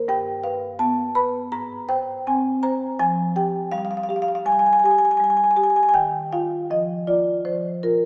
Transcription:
0.08 1.48 G2 loud
0.08 0.43 G5 loud
0.44 1.01 B4 medium
0.44 0.78 F5 loud
0.79 1.37 B3 medium
0.79 1.14 A5 loud
1.15 1.52 B4 medium
1.15 1.51 B5 loud
1.52 2.96 G#2 loud
1.52 1.88 A#5 loud
1.89 2.48 C5 medium
1.89 2.25 G5 loud
2.27 2.86 C4 medium
2.27 2.63 G#5 loud
2.63 3.00 C5 medium
2.63 2.98 A#5 loud
2.99 4.42 F3 loud
2.99 3.34 G#5 loud
3.36 3.94 G4 medium
3.36 3.71 G5 loud
3.72 4.31 G3 medium
3.72 3.78 F5 loud
3.78 3.85 F5 loud
3.85 3.91 F5 loud
3.91 3.97 F5 loud
3.97 4.04 F5 loud
4.04 4.10 F5 loud
4.09 4.69 G4 medium
4.09 4.16 F5 loud
4.16 4.22 F5 loud
4.22 4.28 F5 loud
4.28 4.35 F5 loud
4.35 4.43 F5 loud
4.46 5.06 G3 medium
4.46 4.52 G#5 loud
4.52 4.59 G#5 loud
4.59 4.66 G#5 loud
4.66 4.73 G#5 medium
4.73 4.79 G#5 loud
4.79 4.85 G#5 medium
4.84 5.43 G4 medium
4.84 4.91 G#5 loud
4.91 4.98 G#5 medium
4.98 5.05 G#5 loud
5.05 5.11 G#5 medium
5.11 5.17 G#5 loud
5.17 5.80 G3 medium
5.17 5.24 G#5 loud
5.24 5.30 G#5 loud
5.30 5.37 G#5 loud
5.37 5.44 G#5 loud
5.44 5.51 G#5 loud
5.51 5.57 G#5 loud
5.56 5.95 G4 medium
5.56 5.63 G#5 loud
5.63 5.70 G#5 loud
5.70 5.76 G#5 loud
5.76 5.83 G#5 loud
5.83 5.89 G#5 loud
5.89 5.91 G#5 loud
5.94 7.41 D#3 loud
5.94 6.31 G5 loud
6.33 6.93 F4 medium
6.33 6.69 F5 loud
6.71 7.30 F3 medium
6.71 7.07 D#5 loud
7.07 7.68 F4 medium
7.07 7.43 D5 loud
7.45 8.05 F3 medium
7.45 7.82 C5 medium
7.83 8.05 F4 medium
7.83 8.05 A#4 medium

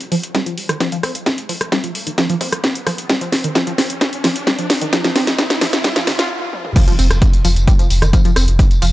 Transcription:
0.00 closed hi-hat medium
0.00 riser medium
0.12 0.15 F3 loud
0.12 open hi-hat loud
0.23 closed hi-hat medium
0.35 0.40 G3 medium
0.35 kick loud
0.35 snare medium
0.35 closed hi-hat medium
0.46 0.54 F3 medium
0.46 closed hi-hat medium
0.58 open hi-hat loud
0.69 0.72 D#3 medium
0.69 cross-stick medium
0.69 closed hi-hat medium
0.80 0.89 F3 loud
0.80 kick loud
0.80 snare medium
0.80 closed hi-hat medium
0.92 0.97 F3 loud
0.92 closed hi-hat medium
1.03 1.12 C4 medium
1.03 cross-stick medium
1.03 open hi-hat loud
1.15 closed hi-hat medium
1.26 kick loud
1.26 snare medium
1.26 closed hi-hat medium
1.38 closed hi-hat medium
1.49 1.52 F3 loud
1.49 open hi-hat loud
1.61 cross-stick medium
1.61 closed hi-hat medium
1.72 1.78 G3 medium
1.72 kick loud
1.72 snare medium
1.72 closed hi-hat medium
1.84 1.92 F3 medium
1.84 closed hi-hat medium
1.95 open hi-hat loud
2.07 2.10 D#3 medium
2.07 closed hi-hat medium
2.18 2.26 F3 loud
2.18 kick loud
2.18 snare medium
2.18 closed hi-hat medium
2.30 2.35 F3 loud
2.30 closed hi-hat medium
2.41 2.49 C4 medium
2.41 kick medium
2.41 open hi-hat loud
2.52 cross-stick medium
2.52 closed hi-hat medium
2.64 kick loud
2.64 snare medium
2.64 closed hi-hat medium
2.75 closed hi-hat medium
2.87 2.90 F3 loud
2.87 cross-stick medium
2.87 open hi-hat loud
2.98 closed hi-hat medium
3.09 3.15 G3 medium
3.09 kick loud
3.09 snare medium
3.09 closed hi-hat medium
3.21 3.29 F3 medium
3.21 closed hi-hat medium
3.32 snare medium
3.32 open hi-hat loud
3.44 3.47 D#3 medium
3.44 closed hi-hat medium
3.55 3.63 F3 loud
3.55 kick loud
3.55 snare medium
3.55 closed hi-hat medium
3.67 3.72 F3 loud
3.67 closed hi-hat medium
3.78 3.86 C4 medium
3.78 snare medium
3.78 open hi-hat loud
3.90 closed hi-hat medium
4.01 kick loud
4.01 snare medium
4.01 closed hi-hat medium
4.13 closed hi-hat medium
4.24 4.27 F3 loud
4.24 snare medium
4.24 open hi-hat loud
4.36 closed hi-hat medium
4.47 4.52 G3 medium
4.47 kick loud
4.47 snare medium
4.47 closed hi-hat medium
4.59 4.66 F3 medium
4.59 closed hi-hat medium
4.70 snare medium
4.70 open hi-hat loud
4.81 4.85 D#3 medium
4.81 closed hi-hat medium
4.93 5.01 F3 loud
4.93 kick loud
4.93 snare medium
4.93 closed hi-hat medium
5.04 5.10 F3 loud
5.04 snare medium
5.04 closed hi-hat medium
5.16 5.24 C4 medium
5.16 snare medium
5.16 open hi-hat loud
5.27 snare medium
5.27 closed hi-hat medium
5.38 kick loud
5.38 snare loud
5.38 closed hi-hat medium
5.50 snare medium
5.50 closed hi-hat medium
5.61 5.65 F3 loud
5.61 snare loud
5.61 open hi-hat loud
5.73 snare medium
5.73 closed hi-hat medium
5.84 5.90 G3 medium
5.84 kick loud
5.84 snare loud
5.84 closed hi-hat medium
5.96 6.04 F3 medium
5.96 snare medium
5.96 closed hi-hat medium
6.07 6.10 D#3 medium
6.07 kick medium
6.07 snare loud
6.07 open hi-hat loud
6.19 6.27 F4 loud
6.19 snare medium
6.19 closed hi-hat medium
6.53 high tom medium
6.65 mid tom medium
6.76 6.84 F3 loud
6.76 kick loud
6.76 closed hi-hat medium
6.76 crash loud
6.76 tambourine soft
6.76 impact medium
6.88 6.93 F3 loud
6.88 closed hi-hat medium
6.88 tambourine soft
6.99 7.10 F1 loud
6.99 7.07 C4 medium
6.99 open hi-hat loud
6.99 tambourine medium
7.10 7.21 F1 medium
7.10 cross-stick medium
7.10 closed hi-hat medium
7.10 tambourine soft
7.22 kick loud
7.22 closed hi-hat medium
7.22 tambourine soft
7.33 closed hi-hat medium
7.33 tambourine soft
7.45 7.56 F1 loud
7.45 7.48 F3 loud
7.45 open hi-hat loud
7.45 tambourine medium
7.56 7.67 F1 medium
7.56 closed hi-hat medium
7.56 tambourine soft
7.67 7.73 G3 medium
7.67 kick loud
7.67 closed hi-hat medium
7.67 tambourine soft
7.79 7.87 F3 medium
7.79 closed hi-hat medium
7.79 tambourine soft
7.90 8.01 F1 loud
7.90 open hi-hat loud
7.90 tambourine medium
8.02 8.13 F1 medium
8.02 8.05 D#3 medium
8.02 cross-stick medium
8.02 closed hi-hat medium
8.02 tambourine soft
8.13 8.21 F3 loud
8.13 kick loud
8.13 closed hi-hat medium
8.13 tambourine soft
8.25 8.30 F3 loud
8.25 closed hi-hat medium
8.25 tambourine soft
8.36 8.47 F1 loud
8.36 8.44 C4 medium
8.36 cross-stick medium
8.36 open hi-hat loud
8.36 tambourine medium
8.48 8.59 F1 medium
8.48 closed hi-hat medium
8.48 tambourine soft
8.59 kick loud
8.59 closed hi-hat medium
8.59 tambourine soft
8.71 closed hi-hat medium
8.71 tambourine soft
8.82 8.92 F1 loud
8.82 8.85 F3 loud
8.82 open hi-hat loud
8.82 tambourine medium

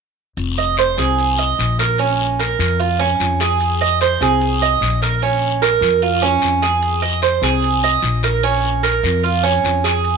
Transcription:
0.37 0.94 F1 medium
0.37 long guiro medium
0.37 maracas medium
0.58 0.77 D#5 medium
0.58 maracas soft
0.77 0.98 C5 medium
0.77 short guiro medium
0.77 maracas soft
0.98 1.54 C2 medium
0.98 1.37 G#4 medium
0.98 short guiro medium
0.98 maracas medium
1.19 long guiro medium
1.19 maracas medium
1.39 1.78 D#5 medium
1.39 maracas soft
1.58 2.53 A#1 medium
1.58 short guiro medium
1.58 maracas soft
1.78 1.99 A#4 medium
1.78 short guiro medium
1.78 maracas medium
1.98 2.38 C#4 medium
1.98 long guiro medium
1.98 maracas medium
2.18 maracas soft
2.39 2.78 A#4 medium
2.39 short guiro medium
2.39 maracas soft
2.59 3.16 F2 loud
2.59 short guiro medium
2.59 maracas medium
2.80 2.99 F4 medium
2.80 long guiro medium
2.80 maracas medium
2.99 3.39 C#4 medium
2.99 maracas soft
3.20 4.15 F2 medium
3.20 short guiro medium
3.20 maracas soft
3.40 3.79 G#4 medium
3.40 short guiro medium
3.40 maracas medium
3.60 long guiro medium
3.60 maracas medium
3.80 4.00 D#5 medium
3.80 maracas soft
4.01 4.21 C5 medium
4.01 short guiro medium
4.01 maracas soft
4.20 4.77 C2 medium
4.20 4.61 G#4 medium
4.20 short guiro medium
4.20 maracas medium
4.41 long guiro medium
4.41 maracas medium
4.61 5.01 D#5 medium
4.61 maracas soft
4.81 5.76 A#1 medium
4.81 short guiro medium
4.81 maracas soft
5.02 5.22 A#4 medium
5.02 short guiro medium
5.02 maracas medium
5.22 5.61 C#4 medium
5.22 long guiro medium
5.22 maracas medium
5.42 maracas soft
5.62 6.01 A#4 medium
5.62 short guiro medium
5.62 maracas soft
5.81 6.38 F2 loud
5.81 short guiro medium
5.81 maracas medium
6.02 6.22 F4 medium
6.02 long guiro medium
6.02 maracas medium
6.22 6.61 C#4 medium
6.22 maracas soft
6.42 7.37 F2 medium
6.42 short guiro medium
6.42 maracas soft
6.62 7.02 G#4 medium
6.62 short guiro medium
6.62 maracas medium
6.82 long guiro medium
6.82 maracas medium
7.02 7.22 D#5 medium
7.02 maracas soft
7.22 7.42 C5 medium
7.22 short guiro medium
7.22 maracas soft
7.42 7.99 C2 medium
7.42 7.82 G#4 medium
7.42 short guiro medium
7.42 maracas medium
7.62 long guiro medium
7.62 maracas medium
7.84 8.23 D#5 medium
7.84 maracas soft
8.02 8.98 A#1 medium
8.02 short guiro medium
8.02 maracas soft
8.23 8.43 A#4 medium
8.23 short guiro medium
8.23 maracas medium
8.43 8.83 C#4 medium
8.43 long guiro medium
8.43 maracas medium
8.64 maracas soft
8.83 9.23 A#4 medium
8.83 short guiro medium
8.83 maracas soft
9.03 9.60 F2 loud
9.03 short guiro medium
9.03 maracas medium
9.23 9.43 F4 soft
9.23 long guiro medium
9.23 maracas medium
9.43 9.83 C#4 medium
9.43 maracas soft
9.63 10.17 F2 medium
9.63 short guiro medium
9.63 maracas soft
9.84 10.17 G#4 medium
9.84 short guiro medium
9.84 maracas medium
10.04 long guiro medium
10.04 maracas medium

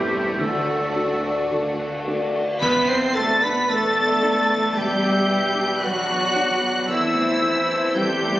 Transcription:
0.00 0.43 E1 medium
0.00 0.37 E2 medium
0.00 0.43 E2 medium
0.00 0.41 G2 medium
0.00 0.44 E3 medium
0.00 0.26 G3 medium
0.00 0.39 G3 medium
0.00 0.43 A3 soft
0.00 2.37 A3 medium
0.00 0.36 C4 medium
0.00 0.43 C4 soft
0.00 0.45 C4 soft
0.00 0.41 E4 medium
0.00 0.43 E4 soft
0.00 0.41 G4 medium
0.00 0.12 A4 medium
0.00 0.37 B4 soft
0.00 0.45 B4 medium
0.00 0.45 E5 medium
0.00 1.49 A5 medium
0.00 0.44 B5 medium
0.13 0.95 A4 soft
0.39 0.93 D2 medium
0.39 2.37 D2 medium
0.39 1.51 A2 medium
0.39 0.93 D3 medium
0.39 2.65 D3 medium
0.39 1.51 A3 medium
0.39 2.41 D4 medium
0.39 2.37 F#4 medium
0.39 1.51 A4 medium
0.68 3.15 D4 soft
0.95 1.47 A3 soft
0.95 1.47 D4 soft
0.95 1.47 F#4 soft
0.95 2.34 A4 medium
1.23 2.06 D5 soft
1.50 2.05 D2 medium
1.50 2.05 D3 soft
1.50 2.66 A5 medium
1.79 2.66 F#5 soft
2.07 2.58 A3 soft
2.07 2.58 D4 soft
2.07 2.58 F#4 soft
2.07 3.95 D5 soft
2.35 2.66 A4 soft
2.61 4.72 E2 medium
2.61 3.57 E2 medium
2.61 6.52 E3 medium
2.61 2.87 B3 medium
2.61 2.87 B3 loud
2.61 2.87 B4 medium
2.61 2.90 B4 medium
2.61 2.89 B5 medium
2.61 2.87 B6 loud
2.61 concert bass drum medium
2.61 crash medium
2.88 5.81 B3 medium
2.88 3.32 B3 medium
2.88 3.16 C4 medium
2.88 3.17 C5 medium
2.88 3.16 C5 medium
2.88 3.16 C6 medium
2.88 3.15 C7 loud
3.15 3.59 B2 medium
3.15 3.42 A3 medium
3.15 3.43 A3 medium
3.15 3.68 D4 medium
3.15 4.21 D4 medium
3.15 3.43 A4 medium
3.15 4.22 B4 medium
3.15 3.45 A5 medium
3.15 3.42 A6 loud
3.40 3.68 B3 medium
3.40 3.70 B3 medium
3.40 3.71 B4 medium
3.40 5.28 B4 medium
3.40 3.70 B4 medium
3.40 3.70 B5 medium
3.40 3.70 B6 loud
3.45 3.87 D4 medium
3.68 4.65 E2 medium
3.68 4.74 A3 medium
3.68 5.55 D4 medium
3.68 4.76 A4 medium
3.68 4.77 A4 loud
3.68 4.14 B4 medium
3.68 4.79 A5 medium
3.68 4.77 A6 loud
3.96 4.40 B3 soft
3.96 4.49 D5 medium
4.22 4.66 D4 medium
4.22 5.28 D4 medium
4.22 5.28 B4 medium
4.22 4.75 B5 medium
4.50 4.92 B3 medium
4.50 5.02 D5 medium
4.75 5.71 E2 medium
4.75 5.19 B2 medium
4.75 5.83 G3 medium
4.75 5.87 G4 medium
4.75 5.83 G4 medium
4.75 5.85 E5 medium
4.75 5.85 G5 medium
4.75 6.94 B5 medium
4.75 5.83 G6 loud
5.02 5.45 B3 medium
5.02 6.94 D5 medium
5.29 5.72 B2 medium
5.29 6.35 D4 medium
5.29 6.94 B4 medium
5.29 6.34 B4 medium
5.54 5.98 D4 medium
5.54 6.09 D4 medium
5.82 6.77 E2 medium
5.82 6.89 F#3 medium
5.82 6.35 B3 medium
5.82 6.90 F#4 medium
5.82 6.91 F#4 medium
5.82 6.25 B4 medium
5.82 6.89 D5 medium
5.82 6.90 F#5 medium
5.82 6.89 F#6 loud
6.08 6.51 B3 soft
6.08 6.62 D4 medium
6.35 6.94 B3 medium
6.35 6.78 D4 medium
6.35 6.89 D4 medium
6.35 6.89 B4 medium
6.61 6.89 B3 medium
6.61 6.94 D4 medium
6.88 8.40 E2 medium
6.88 7.85 E2 medium
6.88 7.94 E3 medium
6.88 8.40 E3 medium
6.88 7.42 C4 medium
6.88 7.95 E4 medium
6.88 8.00 E4 medium
6.88 7.42 A4 medium
6.88 7.98 C5 medium
6.88 7.99 E5 medium
6.88 7.97 E6 loud
7.14 7.58 A3 medium
7.14 8.40 A3 medium
7.42 7.85 E3 medium
7.42 8.40 C4 medium
7.42 8.40 E4 medium
7.42 8.40 A4 medium
7.68 8.40 C4 medium
7.68 8.12 E4 medium
7.95 8.40 E2 medium
7.95 8.40 G3 medium
7.95 8.39 C4 medium
7.95 8.40 G4 medium
7.95 8.40 A4 medium
7.95 8.40 B4 medium
7.95 8.40 G5 medium
7.95 8.40 G6 loud
8.23 8.40 A3 medium
8.23 8.40 E5 medium

